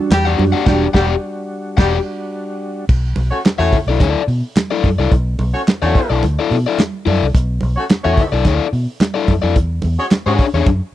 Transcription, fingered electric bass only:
0.11 0.36 E2 loud
0.39 0.52 F#2 medium
0.67 0.86 E1 loud
0.94 1.14 E1 loud
1.78 1.97 E1 loud
2.89 3.14 B1 loud
3.17 3.30 B1 loud
3.59 3.71 E2 medium
3.87 3.99 B1 medium
4.01 4.14 D2 medium
4.28 4.41 B2 loud
4.84 4.97 F#2 medium
4.98 5.10 C2 loud
5.12 5.36 B1 loud
5.39 5.52 B1 loud
5.82 5.94 E2 medium
6.10 6.21 B1 medium
6.23 6.36 D2 medium
6.51 6.64 B2 loud
7.07 7.19 F#2 medium
7.22 7.33 C2 medium
7.35 7.59 B1 loud
7.63 7.75 B1 medium
8.05 8.16 E2 loud
8.32 8.44 B1 medium
8.45 8.58 D2 loud
8.73 8.86 B2 medium
9.28 9.41 F#2 medium
9.43 9.56 F2 medium
9.56 9.80 E2 loud
9.84 9.97 E2 medium
10.26 10.38 G#2 medium
10.54 10.65 E2 medium
10.67 10.80 F#2 medium

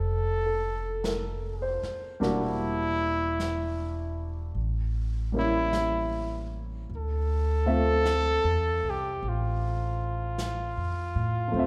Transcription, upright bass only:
0.00 1.79 F1 medium
1.82 muted upright bass stroke soft
2.21 4.51 E1 medium
4.55 6.84 A1 medium
6.90 8.40 D2 medium
8.44 8.80 E2 medium
8.83 9.19 C2 medium
9.23 10.73 A1 medium
10.77 11.13 F2 soft
11.15 11.51 A2 medium
11.54 11.67 D2 medium

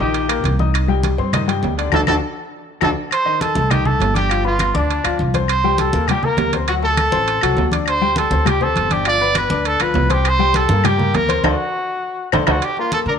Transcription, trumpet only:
0.00 0.55 G4 medium
1.94 2.01 A4 medium
2.08 2.15 A4 medium
2.82 2.89 A4 medium
3.12 3.43 C5 loud
3.41 3.72 A4 medium
3.71 3.88 G4 medium
3.86 4.16 A4 loud
4.16 4.44 G4 medium
4.46 4.78 F4 medium
4.76 5.20 D4 medium
5.49 5.77 C5 medium
5.80 6.09 A4 medium
6.08 6.26 G4 medium
6.24 6.54 A#4 medium
6.68 6.75 F#4 medium
6.83 7.68 A4 loud
7.88 8.20 C5 loud
8.18 8.50 A4 medium
8.48 8.64 G4 medium
8.63 8.94 A4 loud
8.92 9.06 G4 medium
9.08 9.34 D5 loud
9.38 9.68 B4 loud
9.67 9.84 A4 loud
9.82 10.13 B4 loud
10.12 10.30 G4 medium
10.28 10.58 C5 loud
10.56 10.87 A4 medium
10.86 11.17 G4 loud
11.15 11.44 A#4 medium
11.45 12.29 F#4 medium
12.48 12.66 F#4 medium
12.64 12.78 G4 loud
12.79 12.92 F4 medium
12.93 13.00 A4 medium
13.07 13.14 A#4 medium

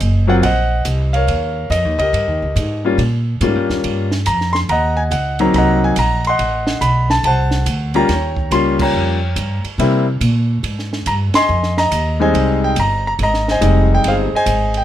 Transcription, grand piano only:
0.00 0.26 C5 medium
0.00 0.26 D#5 medium
0.00 0.33 G#5 medium
0.27 0.41 F#3 medium
0.27 0.41 A#3 medium
0.27 0.41 C4 medium
0.27 0.42 F4 medium
0.27 0.34 F#5 medium
0.43 1.25 C5 medium
0.43 1.25 D#5 medium
0.43 0.83 F#5 medium
1.13 1.95 A#4 medium
1.13 1.96 C#5 medium
1.13 1.73 F5 medium
1.71 1.97 D#5 medium
1.99 2.81 G4 soft
1.99 2.81 A#4 medium
1.99 2.80 D#5 medium
2.85 2.98 G3 medium
2.85 2.98 A#3 medium
2.85 2.98 C#4 medium
2.85 2.98 F4 medium
3.41 4.06 G3 medium
3.41 4.07 A#3 medium
3.41 4.06 C#4 medium
3.41 4.07 F4 medium
4.27 4.55 A#5 medium
4.53 4.58 C6 medium
4.69 5.52 D#5 medium
4.69 5.10 F#5 medium
4.69 4.98 A#5 medium
4.97 5.02 G#5 medium
5.12 5.38 F#5 medium
5.40 5.94 F#3 medium
5.40 5.94 A#3 medium
5.40 5.94 C4 medium
5.40 5.94 D#4 medium
5.40 5.54 A#5 medium
5.56 6.28 D#5 medium
5.56 6.28 F#5 medium
5.56 5.81 A#5 medium
5.84 5.97 G#5 medium
5.99 6.24 A#5 medium
6.27 7.08 D#5 medium
6.27 7.08 F#5 medium
6.27 6.85 C6 medium
6.81 7.10 B5 medium
7.10 7.24 A5 medium
7.25 8.06 C5 medium
7.25 8.07 F#5 medium
7.25 7.64 A5 medium
7.95 8.08 G3 medium
7.95 8.08 A#3 medium
7.95 8.08 C#4 medium
7.95 8.08 F4 medium
7.95 8.76 C#5 medium
7.95 8.76 G5 medium
7.95 8.54 A#5 medium
8.52 9.16 G3 medium
8.52 9.16 A#3 medium
8.52 9.16 C#4 medium
8.52 9.17 F4 medium
8.52 8.81 C6 medium
8.81 9.61 C#5 medium
8.81 9.61 G5 medium
8.81 9.61 A#5 medium
9.79 10.04 G3 medium
9.79 10.04 A#3 medium
9.79 10.04 C4 medium
9.79 10.04 E4 medium
11.07 11.14 A#5 medium
11.35 11.78 D#5 medium
11.35 12.16 G#5 medium
11.35 11.74 C6 loud
11.78 12.20 D#5 medium
11.78 12.17 A#5 loud
12.19 12.74 G3 medium
12.19 12.74 G#3 medium
12.19 12.74 C4 medium
12.19 12.74 D#4 medium
12.19 13.01 C5 medium
12.19 13.02 D#5 medium
12.19 12.60 G#5 medium
12.64 12.77 G5 medium
12.80 13.06 A#5 loud
13.07 13.12 A#5 medium
13.23 13.49 D#5 medium
13.23 13.47 A#5 medium
13.51 14.06 C5 medium
13.51 14.30 D#5 medium
13.51 13.89 G#5 medium
13.61 14.26 G3 medium
13.61 14.26 G#3 medium
13.61 14.26 C4 medium
13.61 14.26 D#4 medium
13.95 14.07 G5 medium
14.08 14.84 G#4 medium
14.08 14.35 C5 medium
14.08 14.14 F5 medium
14.35 14.84 C5 medium
14.35 14.84 D#5 medium
14.35 14.74 G#5 loud
14.77 14.84 G5 medium

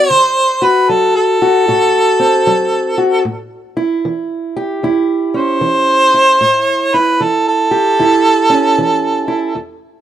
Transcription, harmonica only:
0.00 0.11 D5 loud
0.11 0.65 C5 loud
0.64 0.90 B4 medium
0.89 1.15 A4 medium
1.16 3.48 A4 loud
5.36 6.97 C5 loud
6.95 7.23 B4 medium
7.22 7.46 A4 medium
7.48 9.79 A4 loud

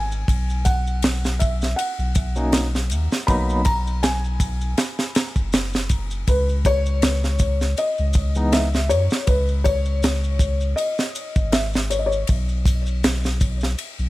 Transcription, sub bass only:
0.00 0.24 G#1 medium
0.28 1.75 B1 medium
1.98 2.92 B1 medium
2.90 3.08 D#2 medium
3.28 4.75 B1 medium
5.36 6.25 F#1 medium
6.28 7.75 C#2 loud
7.99 8.92 C#2 medium
8.90 9.09 F#2 medium
9.28 10.75 C#2 medium
11.36 12.25 G#1 medium
12.29 13.75 B1 medium
13.99 14.09 B1 medium

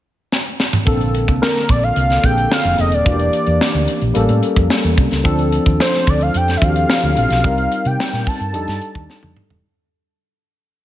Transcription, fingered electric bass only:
0.87 1.28 A#1 medium
1.28 1.39 C2 medium
1.69 1.91 A#1 medium
1.96 2.18 C2 medium
2.24 2.45 A#1 medium
2.65 2.76 F1 medium
2.79 2.92 F1 medium
2.92 3.03 D#1 medium
3.06 3.28 E1 loud
3.47 3.58 E2 medium
3.74 3.85 D2 medium
4.02 4.13 A#1 medium
4.16 4.26 A1 loud
4.29 4.40 A2 medium
4.56 4.67 F2 medium
4.84 4.95 E2 medium
4.98 5.09 C2 medium
5.12 5.22 C#2 medium
5.25 5.57 D2 loud
5.66 5.77 D#2 medium
6.07 6.29 D2 medium
6.35 6.56 F2 medium
6.62 6.83 D#2 medium
7.03 7.14 D2 medium
7.17 7.28 A#1 medium
7.31 7.44 B1 medium
7.44 7.66 C2 medium
7.86 7.96 C3 medium
8.13 8.24 A#2 medium
8.40 8.54 G2 medium
8.54 8.65 F2 loud
8.68 8.79 G2 medium
8.95 9.06 D#2 medium
9.23 9.34 F2 medium
9.50 9.61 E1 medium

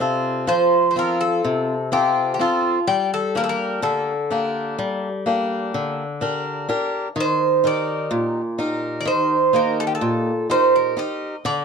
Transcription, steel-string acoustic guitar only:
0.00 0.45 C3 medium
0.00 0.77 C4 soft
0.00 0.77 F4 soft
0.00 0.77 A4 soft
0.47 1.41 F3 medium
0.96 1.73 C4 soft
0.96 1.73 F4 soft
0.96 1.73 A4 soft
1.44 2.37 C3 medium
1.92 2.39 C4 soft
1.92 2.39 F4 soft
1.92 2.39 A4 soft
2.39 2.78 C4 soft
2.39 2.78 F4 soft
2.39 2.78 A4 soft
2.87 3.80 G3 medium
3.35 4.12 A#3 soft
3.35 4.12 D4 soft
3.35 4.12 G4 soft
3.82 4.76 D3 medium
4.30 5.08 A#3 medium
4.30 5.07 D4 soft
4.30 5.08 G4 soft
4.79 5.71 G3 medium
5.26 6.03 A#3 medium
5.26 6.03 D4 soft
5.26 6.03 G4 soft
5.74 6.67 D3 medium
6.21 6.68 D4 soft
6.21 6.68 G4 soft
6.21 6.68 A#4 soft
6.69 7.07 D4 soft
6.69 7.07 G4 soft
6.69 7.08 A#4 medium
7.16 8.09 D#3 medium
7.64 8.40 D#4 soft
7.64 8.40 G4 soft
7.64 8.41 A#4 soft
8.11 9.04 A#2 medium
8.58 9.35 D#4 soft
8.58 9.35 G4 soft
8.58 9.36 A#4 soft
9.05 9.98 D#3 medium
9.53 10.30 A#3 soft
9.53 10.30 D#4 soft
9.53 10.30 G4 soft
10.01 10.93 A#2 medium
10.50 10.96 D#4 soft
10.50 10.95 G4 soft
10.50 10.97 A#4 soft
10.97 11.35 D#4 soft
10.97 11.34 G4 soft
10.97 11.35 A#4 medium
11.45 11.65 D3 medium

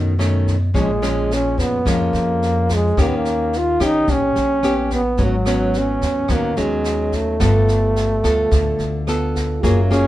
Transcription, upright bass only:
0.00 0.70 F#2 medium
0.74 1.53 A#1 medium
1.58 1.83 F2 medium
1.85 2.11 F2 medium
2.13 2.92 F2 medium
2.97 3.76 D#2 medium
3.80 4.06 A#1 medium
4.08 4.34 A#1 medium
4.36 5.15 A#1 medium
5.19 5.98 G#1 medium
6.02 6.28 D#2 medium
6.29 6.55 D#2 medium
6.57 7.37 D#2 medium
7.40 8.20 G1 medium
8.24 8.50 D2 medium
8.51 8.78 D2 medium
8.79 9.59 D2 medium
9.64 10.07 F#1 loud

